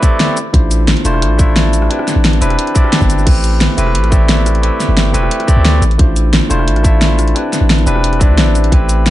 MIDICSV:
0, 0, Header, 1, 4, 480
1, 0, Start_track
1, 0, Tempo, 340909
1, 759, Time_signature, 4, 2, 24, 8
1, 12813, End_track
2, 0, Start_track
2, 0, Title_t, "Tine electric piano"
2, 0, Program_c, 0, 4
2, 0, Control_c, 0, 64, 127
2, 0, Note_on_c, 0, 57, 94
2, 0, Note_on_c, 0, 60, 92
2, 0, Note_on_c, 0, 64, 91
2, 0, Note_on_c, 0, 67, 87
2, 0, Note_on_c, 0, 71, 105
2, 0, Note_on_c, 0, 74, 112
2, 30, Note_off_c, 0, 57, 0
2, 30, Note_on_c, 0, 57, 101
2, 34, Note_off_c, 0, 60, 0
2, 34, Note_on_c, 0, 60, 97
2, 38, Note_off_c, 0, 64, 0
2, 38, Note_on_c, 0, 64, 91
2, 44, Note_off_c, 0, 67, 0
2, 44, Note_on_c, 0, 67, 92
2, 49, Note_off_c, 0, 74, 0
2, 49, Note_on_c, 0, 74, 113
2, 500, Note_off_c, 0, 57, 0
2, 503, Note_off_c, 0, 60, 0
2, 504, Note_off_c, 0, 64, 0
2, 507, Note_off_c, 0, 67, 0
2, 510, Note_off_c, 0, 74, 0
2, 537, Control_c, 0, 64, 0
2, 549, Note_off_c, 0, 71, 0
2, 738, Note_on_c, 0, 57, 80
2, 746, Note_on_c, 0, 62, 77
2, 757, Note_on_c, 0, 64, 72
2, 768, Note_on_c, 0, 65, 77
2, 771, Control_c, 0, 64, 127
2, 778, Note_on_c, 0, 72, 89
2, 1441, Note_off_c, 0, 57, 0
2, 1444, Note_off_c, 0, 62, 0
2, 1450, Note_off_c, 0, 64, 0
2, 1455, Note_off_c, 0, 65, 0
2, 1460, Note_off_c, 0, 72, 0
2, 1473, Note_on_c, 0, 57, 101
2, 1479, Note_on_c, 0, 62, 85
2, 1482, Note_on_c, 0, 64, 84
2, 1486, Note_on_c, 0, 65, 85
2, 1493, Note_on_c, 0, 72, 110
2, 1925, Note_off_c, 0, 57, 0
2, 1931, Note_off_c, 0, 62, 0
2, 1932, Note_off_c, 0, 64, 0
2, 1935, Note_off_c, 0, 65, 0
2, 1938, Note_off_c, 0, 72, 0
2, 1942, Note_on_c, 0, 57, 96
2, 1952, Note_on_c, 0, 62, 92
2, 1964, Note_on_c, 0, 64, 99
2, 1973, Note_on_c, 0, 65, 88
2, 1982, Note_on_c, 0, 76, 112
2, 2642, Note_off_c, 0, 57, 0
2, 2647, Note_off_c, 0, 62, 0
2, 2653, Note_off_c, 0, 64, 0
2, 2658, Note_off_c, 0, 65, 0
2, 2662, Note_off_c, 0, 76, 0
2, 2664, Note_on_c, 0, 60, 85
2, 2673, Note_on_c, 0, 62, 76
2, 2686, Note_on_c, 0, 64, 80
2, 2694, Note_on_c, 0, 67, 78
2, 2698, Control_c, 0, 64, 0
2, 2704, Note_on_c, 0, 71, 92
2, 2908, Control_c, 0, 64, 127
2, 3364, Note_off_c, 0, 60, 0
2, 3368, Note_off_c, 0, 62, 0
2, 3374, Note_off_c, 0, 64, 0
2, 3378, Note_off_c, 0, 67, 0
2, 3383, Note_off_c, 0, 71, 0
2, 3390, Note_on_c, 0, 60, 100
2, 3396, Note_on_c, 0, 62, 84
2, 3402, Note_on_c, 0, 64, 90
2, 3406, Note_on_c, 0, 67, 87
2, 3411, Note_on_c, 0, 71, 109
2, 3846, Note_off_c, 0, 60, 0
2, 3849, Note_off_c, 0, 62, 0
2, 3852, Note_off_c, 0, 64, 0
2, 3854, Note_off_c, 0, 67, 0
2, 3857, Note_off_c, 0, 71, 0
2, 3862, Note_on_c, 0, 60, 99
2, 3873, Note_on_c, 0, 62, 93
2, 3883, Note_on_c, 0, 64, 95
2, 3892, Note_on_c, 0, 67, 92
2, 3904, Note_on_c, 0, 74, 109
2, 4562, Note_off_c, 0, 60, 0
2, 4568, Note_off_c, 0, 62, 0
2, 4573, Note_off_c, 0, 64, 0
2, 4577, Note_off_c, 0, 67, 0
2, 4581, Note_on_c, 0, 57, 85
2, 4583, Note_off_c, 0, 74, 0
2, 4591, Note_on_c, 0, 60, 77
2, 4602, Note_on_c, 0, 64, 73
2, 4612, Note_on_c, 0, 67, 72
2, 4616, Control_c, 0, 64, 0
2, 4623, Note_on_c, 0, 71, 88
2, 4878, Control_c, 0, 64, 127
2, 5282, Note_off_c, 0, 57, 0
2, 5287, Note_off_c, 0, 60, 0
2, 5292, Note_off_c, 0, 64, 0
2, 5297, Note_off_c, 0, 67, 0
2, 5303, Note_off_c, 0, 71, 0
2, 5310, Note_on_c, 0, 57, 94
2, 5317, Note_on_c, 0, 60, 91
2, 5321, Note_on_c, 0, 64, 85
2, 5327, Note_on_c, 0, 67, 91
2, 5332, Note_on_c, 0, 71, 103
2, 5766, Note_off_c, 0, 57, 0
2, 5770, Note_off_c, 0, 60, 0
2, 5772, Note_off_c, 0, 64, 0
2, 5775, Note_off_c, 0, 67, 0
2, 5777, Note_off_c, 0, 71, 0
2, 5781, Note_on_c, 0, 57, 95
2, 5793, Note_on_c, 0, 60, 91
2, 5801, Note_on_c, 0, 64, 95
2, 5811, Note_on_c, 0, 67, 92
2, 5821, Note_on_c, 0, 74, 105
2, 6482, Note_off_c, 0, 57, 0
2, 6488, Note_off_c, 0, 60, 0
2, 6492, Note_off_c, 0, 64, 0
2, 6497, Note_off_c, 0, 67, 0
2, 6498, Note_on_c, 0, 57, 83
2, 6502, Note_off_c, 0, 74, 0
2, 6509, Note_on_c, 0, 60, 71
2, 6517, Note_on_c, 0, 64, 80
2, 6528, Note_on_c, 0, 67, 76
2, 6538, Note_on_c, 0, 71, 87
2, 7201, Note_off_c, 0, 57, 0
2, 7206, Note_off_c, 0, 60, 0
2, 7210, Note_off_c, 0, 64, 0
2, 7215, Note_off_c, 0, 67, 0
2, 7220, Note_off_c, 0, 71, 0
2, 7223, Note_on_c, 0, 57, 101
2, 7230, Note_on_c, 0, 60, 90
2, 7233, Note_on_c, 0, 64, 86
2, 7239, Note_on_c, 0, 67, 88
2, 7244, Note_on_c, 0, 71, 105
2, 7683, Note_off_c, 0, 57, 0
2, 7686, Note_off_c, 0, 60, 0
2, 7688, Note_off_c, 0, 64, 0
2, 7691, Note_off_c, 0, 67, 0
2, 7694, Note_off_c, 0, 71, 0
2, 7703, Note_on_c, 0, 57, 101
2, 7710, Note_on_c, 0, 60, 97
2, 7714, Note_on_c, 0, 64, 93
2, 7718, Note_on_c, 0, 67, 97
2, 7724, Note_on_c, 0, 74, 118
2, 8177, Note_off_c, 0, 57, 0
2, 8181, Note_off_c, 0, 60, 0
2, 8182, Note_off_c, 0, 64, 0
2, 8185, Note_off_c, 0, 67, 0
2, 8187, Note_off_c, 0, 74, 0
2, 8215, Control_c, 0, 64, 0
2, 8417, Note_on_c, 0, 57, 86
2, 8427, Note_on_c, 0, 62, 77
2, 8435, Note_on_c, 0, 64, 75
2, 8437, Control_c, 0, 64, 127
2, 8443, Note_on_c, 0, 65, 76
2, 8455, Note_on_c, 0, 72, 89
2, 9120, Note_off_c, 0, 57, 0
2, 9125, Note_off_c, 0, 62, 0
2, 9129, Note_off_c, 0, 64, 0
2, 9133, Note_off_c, 0, 65, 0
2, 9139, Note_off_c, 0, 72, 0
2, 9145, Note_on_c, 0, 57, 98
2, 9151, Note_on_c, 0, 62, 85
2, 9155, Note_on_c, 0, 64, 89
2, 9162, Note_on_c, 0, 65, 89
2, 9165, Note_on_c, 0, 72, 110
2, 9597, Note_off_c, 0, 57, 0
2, 9607, Note_off_c, 0, 62, 0
2, 9609, Note_off_c, 0, 64, 0
2, 9613, Note_off_c, 0, 65, 0
2, 9614, Note_off_c, 0, 72, 0
2, 9614, Note_on_c, 0, 57, 100
2, 9624, Note_on_c, 0, 62, 88
2, 9634, Note_on_c, 0, 64, 93
2, 9644, Note_on_c, 0, 65, 88
2, 9655, Note_on_c, 0, 76, 113
2, 10318, Note_off_c, 0, 57, 0
2, 10323, Note_off_c, 0, 62, 0
2, 10328, Note_off_c, 0, 64, 0
2, 10334, Note_off_c, 0, 65, 0
2, 10336, Note_on_c, 0, 60, 82
2, 10339, Note_off_c, 0, 76, 0
2, 10349, Note_on_c, 0, 62, 78
2, 10359, Note_on_c, 0, 64, 77
2, 10368, Note_on_c, 0, 67, 72
2, 10378, Control_c, 0, 64, 0
2, 10380, Note_on_c, 0, 71, 92
2, 10631, Control_c, 0, 64, 127
2, 11039, Note_off_c, 0, 60, 0
2, 11046, Note_off_c, 0, 62, 0
2, 11051, Note_off_c, 0, 64, 0
2, 11055, Note_off_c, 0, 67, 0
2, 11061, Note_off_c, 0, 71, 0
2, 11071, Note_on_c, 0, 60, 91
2, 11074, Note_on_c, 0, 62, 86
2, 11080, Note_on_c, 0, 64, 88
2, 11085, Note_on_c, 0, 67, 90
2, 11090, Note_on_c, 0, 71, 109
2, 11522, Note_off_c, 0, 60, 0
2, 11528, Note_off_c, 0, 62, 0
2, 11531, Note_off_c, 0, 64, 0
2, 11534, Note_off_c, 0, 67, 0
2, 11536, Note_off_c, 0, 71, 0
2, 11539, Note_on_c, 0, 60, 106
2, 11551, Note_on_c, 0, 62, 89
2, 11561, Note_on_c, 0, 64, 91
2, 11573, Note_on_c, 0, 67, 87
2, 11580, Note_on_c, 0, 74, 105
2, 12241, Note_off_c, 0, 60, 0
2, 12247, Note_off_c, 0, 62, 0
2, 12252, Note_off_c, 0, 64, 0
2, 12258, Note_off_c, 0, 67, 0
2, 12261, Note_off_c, 0, 74, 0
2, 12261, Note_on_c, 0, 57, 82
2, 12271, Note_on_c, 0, 60, 74
2, 12281, Note_on_c, 0, 64, 78
2, 12291, Note_on_c, 0, 67, 77
2, 12300, Control_c, 0, 64, 0
2, 12300, Note_on_c, 0, 71, 90
2, 12552, Control_c, 0, 64, 127
2, 12813, Note_off_c, 0, 57, 0
2, 12813, Note_off_c, 0, 60, 0
2, 12813, Note_off_c, 0, 64, 0
2, 12813, Note_off_c, 0, 67, 0
2, 12813, Note_off_c, 0, 71, 0
2, 12813, End_track
3, 0, Start_track
3, 0, Title_t, "808-style bass"
3, 0, Program_c, 1, 38
3, 757, Note_on_c, 1, 33, 98
3, 1341, Note_off_c, 1, 33, 0
3, 1477, Note_on_c, 1, 28, 80
3, 1717, Note_on_c, 1, 33, 86
3, 1738, Note_off_c, 1, 28, 0
3, 2659, Note_off_c, 1, 33, 0
3, 3040, Note_on_c, 1, 33, 85
3, 3379, Note_off_c, 1, 33, 0
3, 3399, Note_on_c, 1, 28, 82
3, 3616, Note_off_c, 1, 28, 0
3, 4242, Note_on_c, 1, 31, 106
3, 4581, Note_off_c, 1, 31, 0
3, 4600, Note_on_c, 1, 33, 93
3, 5182, Note_off_c, 1, 33, 0
3, 5321, Note_on_c, 1, 28, 81
3, 5560, Note_on_c, 1, 33, 87
3, 5581, Note_off_c, 1, 28, 0
3, 6623, Note_off_c, 1, 33, 0
3, 6879, Note_on_c, 1, 31, 83
3, 7219, Note_off_c, 1, 31, 0
3, 7237, Note_on_c, 1, 28, 77
3, 7454, Note_off_c, 1, 28, 0
3, 7837, Note_on_c, 1, 38, 91
3, 8178, Note_off_c, 1, 38, 0
3, 8192, Note_on_c, 1, 33, 89
3, 8412, Note_off_c, 1, 33, 0
3, 8438, Note_on_c, 1, 33, 100
3, 9021, Note_off_c, 1, 33, 0
3, 9157, Note_on_c, 1, 28, 81
3, 9394, Note_on_c, 1, 33, 88
3, 9415, Note_off_c, 1, 28, 0
3, 10338, Note_off_c, 1, 33, 0
3, 10717, Note_on_c, 1, 33, 87
3, 11058, Note_off_c, 1, 33, 0
3, 11074, Note_on_c, 1, 28, 85
3, 11558, Note_on_c, 1, 38, 103
3, 11579, Note_off_c, 1, 28, 0
3, 11793, Note_on_c, 1, 33, 106
3, 11814, Note_off_c, 1, 38, 0
3, 12257, Note_off_c, 1, 33, 0
3, 12279, Note_on_c, 1, 33, 100
3, 12813, Note_off_c, 1, 33, 0
3, 12813, End_track
4, 0, Start_track
4, 0, Title_t, "Drums"
4, 36, Note_on_c, 9, 36, 104
4, 41, Note_on_c, 9, 42, 67
4, 41, Note_on_c, 9, 82, 62
4, 177, Note_off_c, 9, 36, 0
4, 182, Note_off_c, 9, 42, 0
4, 182, Note_off_c, 9, 82, 0
4, 281, Note_on_c, 9, 38, 115
4, 281, Note_on_c, 9, 42, 92
4, 422, Note_off_c, 9, 38, 0
4, 422, Note_off_c, 9, 42, 0
4, 521, Note_on_c, 9, 42, 64
4, 521, Note_on_c, 9, 82, 60
4, 661, Note_off_c, 9, 42, 0
4, 661, Note_off_c, 9, 82, 0
4, 757, Note_on_c, 9, 36, 109
4, 761, Note_on_c, 9, 42, 95
4, 898, Note_off_c, 9, 36, 0
4, 902, Note_off_c, 9, 42, 0
4, 1000, Note_on_c, 9, 42, 72
4, 1000, Note_on_c, 9, 82, 62
4, 1141, Note_off_c, 9, 42, 0
4, 1141, Note_off_c, 9, 82, 0
4, 1239, Note_on_c, 9, 38, 114
4, 1239, Note_on_c, 9, 42, 94
4, 1362, Note_off_c, 9, 42, 0
4, 1362, Note_on_c, 9, 42, 39
4, 1380, Note_off_c, 9, 38, 0
4, 1479, Note_off_c, 9, 42, 0
4, 1479, Note_on_c, 9, 42, 76
4, 1479, Note_on_c, 9, 82, 65
4, 1603, Note_on_c, 9, 37, 33
4, 1620, Note_off_c, 9, 42, 0
4, 1620, Note_off_c, 9, 82, 0
4, 1722, Note_off_c, 9, 37, 0
4, 1722, Note_on_c, 9, 37, 48
4, 1722, Note_on_c, 9, 42, 102
4, 1863, Note_off_c, 9, 37, 0
4, 1863, Note_off_c, 9, 42, 0
4, 1960, Note_on_c, 9, 36, 103
4, 1961, Note_on_c, 9, 42, 71
4, 1961, Note_on_c, 9, 82, 66
4, 2101, Note_off_c, 9, 36, 0
4, 2102, Note_off_c, 9, 42, 0
4, 2102, Note_off_c, 9, 82, 0
4, 2202, Note_on_c, 9, 38, 117
4, 2202, Note_on_c, 9, 42, 99
4, 2343, Note_off_c, 9, 38, 0
4, 2343, Note_off_c, 9, 42, 0
4, 2440, Note_on_c, 9, 42, 61
4, 2440, Note_on_c, 9, 82, 60
4, 2565, Note_on_c, 9, 37, 46
4, 2581, Note_off_c, 9, 42, 0
4, 2581, Note_off_c, 9, 82, 0
4, 2684, Note_on_c, 9, 42, 93
4, 2706, Note_off_c, 9, 37, 0
4, 2805, Note_on_c, 9, 37, 55
4, 2825, Note_off_c, 9, 42, 0
4, 2924, Note_on_c, 9, 38, 37
4, 2924, Note_on_c, 9, 42, 72
4, 2924, Note_on_c, 9, 82, 62
4, 2946, Note_off_c, 9, 37, 0
4, 3065, Note_off_c, 9, 38, 0
4, 3065, Note_off_c, 9, 42, 0
4, 3065, Note_off_c, 9, 82, 0
4, 3163, Note_on_c, 9, 38, 115
4, 3163, Note_on_c, 9, 42, 97
4, 3285, Note_off_c, 9, 42, 0
4, 3285, Note_on_c, 9, 42, 38
4, 3304, Note_off_c, 9, 38, 0
4, 3404, Note_off_c, 9, 42, 0
4, 3404, Note_on_c, 9, 42, 76
4, 3404, Note_on_c, 9, 82, 68
4, 3526, Note_off_c, 9, 42, 0
4, 3526, Note_on_c, 9, 37, 34
4, 3526, Note_on_c, 9, 42, 36
4, 3544, Note_off_c, 9, 82, 0
4, 3642, Note_off_c, 9, 42, 0
4, 3642, Note_on_c, 9, 42, 101
4, 3667, Note_off_c, 9, 37, 0
4, 3764, Note_off_c, 9, 42, 0
4, 3764, Note_on_c, 9, 42, 38
4, 3880, Note_off_c, 9, 42, 0
4, 3880, Note_on_c, 9, 36, 108
4, 3880, Note_on_c, 9, 42, 70
4, 3880, Note_on_c, 9, 82, 64
4, 4004, Note_on_c, 9, 37, 55
4, 4021, Note_off_c, 9, 36, 0
4, 4021, Note_off_c, 9, 42, 0
4, 4021, Note_off_c, 9, 82, 0
4, 4122, Note_on_c, 9, 38, 117
4, 4122, Note_on_c, 9, 42, 104
4, 4145, Note_off_c, 9, 37, 0
4, 4243, Note_on_c, 9, 36, 61
4, 4244, Note_on_c, 9, 82, 28
4, 4263, Note_off_c, 9, 38, 0
4, 4263, Note_off_c, 9, 42, 0
4, 4361, Note_off_c, 9, 82, 0
4, 4361, Note_on_c, 9, 42, 66
4, 4361, Note_on_c, 9, 82, 60
4, 4384, Note_off_c, 9, 36, 0
4, 4485, Note_off_c, 9, 82, 0
4, 4485, Note_on_c, 9, 82, 29
4, 4502, Note_off_c, 9, 42, 0
4, 4600, Note_on_c, 9, 42, 101
4, 4600, Note_on_c, 9, 49, 97
4, 4601, Note_on_c, 9, 36, 113
4, 4626, Note_off_c, 9, 82, 0
4, 4740, Note_off_c, 9, 42, 0
4, 4740, Note_off_c, 9, 49, 0
4, 4741, Note_off_c, 9, 36, 0
4, 4842, Note_on_c, 9, 42, 66
4, 4842, Note_on_c, 9, 82, 63
4, 4983, Note_off_c, 9, 42, 0
4, 4983, Note_off_c, 9, 82, 0
4, 5083, Note_on_c, 9, 38, 122
4, 5083, Note_on_c, 9, 42, 99
4, 5224, Note_off_c, 9, 38, 0
4, 5224, Note_off_c, 9, 42, 0
4, 5321, Note_on_c, 9, 42, 72
4, 5321, Note_on_c, 9, 82, 65
4, 5446, Note_on_c, 9, 37, 46
4, 5462, Note_off_c, 9, 42, 0
4, 5462, Note_off_c, 9, 82, 0
4, 5561, Note_on_c, 9, 42, 105
4, 5587, Note_off_c, 9, 37, 0
4, 5685, Note_off_c, 9, 42, 0
4, 5685, Note_on_c, 9, 37, 36
4, 5685, Note_on_c, 9, 42, 39
4, 5800, Note_on_c, 9, 36, 110
4, 5803, Note_off_c, 9, 42, 0
4, 5803, Note_on_c, 9, 42, 72
4, 5803, Note_on_c, 9, 82, 64
4, 5826, Note_off_c, 9, 37, 0
4, 5941, Note_off_c, 9, 36, 0
4, 5944, Note_off_c, 9, 42, 0
4, 5944, Note_off_c, 9, 82, 0
4, 6042, Note_on_c, 9, 38, 121
4, 6042, Note_on_c, 9, 42, 100
4, 6182, Note_off_c, 9, 38, 0
4, 6182, Note_off_c, 9, 42, 0
4, 6283, Note_on_c, 9, 37, 47
4, 6283, Note_on_c, 9, 42, 67
4, 6283, Note_on_c, 9, 82, 57
4, 6406, Note_off_c, 9, 42, 0
4, 6406, Note_on_c, 9, 42, 38
4, 6423, Note_off_c, 9, 37, 0
4, 6423, Note_off_c, 9, 82, 0
4, 6525, Note_off_c, 9, 42, 0
4, 6525, Note_on_c, 9, 42, 94
4, 6665, Note_off_c, 9, 42, 0
4, 6763, Note_on_c, 9, 38, 40
4, 6763, Note_on_c, 9, 42, 65
4, 6763, Note_on_c, 9, 82, 60
4, 6904, Note_off_c, 9, 38, 0
4, 6904, Note_off_c, 9, 42, 0
4, 6904, Note_off_c, 9, 82, 0
4, 7002, Note_on_c, 9, 38, 121
4, 7002, Note_on_c, 9, 42, 96
4, 7142, Note_off_c, 9, 38, 0
4, 7142, Note_off_c, 9, 42, 0
4, 7243, Note_on_c, 9, 42, 72
4, 7243, Note_on_c, 9, 82, 59
4, 7365, Note_on_c, 9, 37, 50
4, 7383, Note_off_c, 9, 42, 0
4, 7383, Note_off_c, 9, 82, 0
4, 7480, Note_on_c, 9, 42, 96
4, 7505, Note_off_c, 9, 37, 0
4, 7602, Note_off_c, 9, 42, 0
4, 7602, Note_on_c, 9, 37, 36
4, 7602, Note_on_c, 9, 42, 34
4, 7717, Note_on_c, 9, 36, 113
4, 7720, Note_off_c, 9, 42, 0
4, 7720, Note_on_c, 9, 42, 68
4, 7720, Note_on_c, 9, 82, 58
4, 7743, Note_off_c, 9, 37, 0
4, 7858, Note_off_c, 9, 36, 0
4, 7861, Note_off_c, 9, 42, 0
4, 7861, Note_off_c, 9, 82, 0
4, 7959, Note_on_c, 9, 38, 127
4, 7959, Note_on_c, 9, 42, 96
4, 8099, Note_off_c, 9, 38, 0
4, 8099, Note_off_c, 9, 42, 0
4, 8199, Note_on_c, 9, 42, 65
4, 8199, Note_on_c, 9, 82, 56
4, 8324, Note_off_c, 9, 42, 0
4, 8324, Note_on_c, 9, 42, 37
4, 8340, Note_off_c, 9, 82, 0
4, 8437, Note_on_c, 9, 36, 122
4, 8438, Note_off_c, 9, 42, 0
4, 8438, Note_on_c, 9, 42, 90
4, 8578, Note_off_c, 9, 36, 0
4, 8579, Note_off_c, 9, 42, 0
4, 8678, Note_on_c, 9, 42, 64
4, 8678, Note_on_c, 9, 82, 60
4, 8819, Note_off_c, 9, 42, 0
4, 8819, Note_off_c, 9, 82, 0
4, 8919, Note_on_c, 9, 38, 127
4, 8919, Note_on_c, 9, 42, 95
4, 9060, Note_off_c, 9, 38, 0
4, 9060, Note_off_c, 9, 42, 0
4, 9161, Note_on_c, 9, 42, 66
4, 9161, Note_on_c, 9, 82, 62
4, 9283, Note_on_c, 9, 37, 47
4, 9302, Note_off_c, 9, 42, 0
4, 9302, Note_off_c, 9, 82, 0
4, 9401, Note_on_c, 9, 42, 94
4, 9423, Note_off_c, 9, 37, 0
4, 9522, Note_off_c, 9, 42, 0
4, 9522, Note_on_c, 9, 37, 34
4, 9522, Note_on_c, 9, 42, 35
4, 9637, Note_on_c, 9, 36, 111
4, 9640, Note_off_c, 9, 42, 0
4, 9640, Note_on_c, 9, 42, 64
4, 9640, Note_on_c, 9, 82, 61
4, 9663, Note_off_c, 9, 37, 0
4, 9778, Note_off_c, 9, 36, 0
4, 9780, Note_off_c, 9, 42, 0
4, 9780, Note_off_c, 9, 82, 0
4, 9879, Note_on_c, 9, 38, 124
4, 9879, Note_on_c, 9, 42, 94
4, 10019, Note_off_c, 9, 38, 0
4, 10019, Note_off_c, 9, 42, 0
4, 10119, Note_on_c, 9, 37, 44
4, 10119, Note_on_c, 9, 42, 61
4, 10119, Note_on_c, 9, 82, 54
4, 10244, Note_off_c, 9, 42, 0
4, 10244, Note_on_c, 9, 42, 38
4, 10260, Note_off_c, 9, 37, 0
4, 10260, Note_off_c, 9, 82, 0
4, 10361, Note_off_c, 9, 42, 0
4, 10361, Note_on_c, 9, 42, 92
4, 10502, Note_off_c, 9, 42, 0
4, 10602, Note_on_c, 9, 38, 41
4, 10602, Note_on_c, 9, 42, 66
4, 10602, Note_on_c, 9, 82, 60
4, 10742, Note_off_c, 9, 38, 0
4, 10742, Note_off_c, 9, 42, 0
4, 10742, Note_off_c, 9, 82, 0
4, 10842, Note_on_c, 9, 38, 123
4, 10842, Note_on_c, 9, 42, 88
4, 10963, Note_off_c, 9, 42, 0
4, 10963, Note_on_c, 9, 42, 34
4, 10982, Note_off_c, 9, 38, 0
4, 11080, Note_off_c, 9, 42, 0
4, 11080, Note_on_c, 9, 42, 63
4, 11080, Note_on_c, 9, 82, 60
4, 11204, Note_on_c, 9, 37, 47
4, 11221, Note_off_c, 9, 42, 0
4, 11221, Note_off_c, 9, 82, 0
4, 11320, Note_on_c, 9, 42, 96
4, 11344, Note_off_c, 9, 37, 0
4, 11444, Note_off_c, 9, 42, 0
4, 11444, Note_on_c, 9, 37, 33
4, 11444, Note_on_c, 9, 42, 35
4, 11558, Note_on_c, 9, 36, 112
4, 11560, Note_off_c, 9, 42, 0
4, 11560, Note_on_c, 9, 42, 68
4, 11560, Note_on_c, 9, 82, 61
4, 11584, Note_off_c, 9, 37, 0
4, 11699, Note_off_c, 9, 36, 0
4, 11700, Note_off_c, 9, 42, 0
4, 11700, Note_off_c, 9, 82, 0
4, 11801, Note_on_c, 9, 38, 122
4, 11801, Note_on_c, 9, 42, 88
4, 11942, Note_off_c, 9, 38, 0
4, 11942, Note_off_c, 9, 42, 0
4, 12042, Note_on_c, 9, 42, 60
4, 12042, Note_on_c, 9, 82, 55
4, 12165, Note_off_c, 9, 42, 0
4, 12165, Note_on_c, 9, 42, 35
4, 12182, Note_off_c, 9, 82, 0
4, 12279, Note_on_c, 9, 36, 106
4, 12283, Note_off_c, 9, 42, 0
4, 12283, Note_on_c, 9, 42, 86
4, 12420, Note_off_c, 9, 36, 0
4, 12424, Note_off_c, 9, 42, 0
4, 12521, Note_on_c, 9, 42, 66
4, 12521, Note_on_c, 9, 82, 64
4, 12662, Note_off_c, 9, 42, 0
4, 12662, Note_off_c, 9, 82, 0
4, 12763, Note_on_c, 9, 38, 119
4, 12763, Note_on_c, 9, 42, 95
4, 12813, Note_off_c, 9, 38, 0
4, 12813, Note_off_c, 9, 42, 0
4, 12813, End_track
0, 0, End_of_file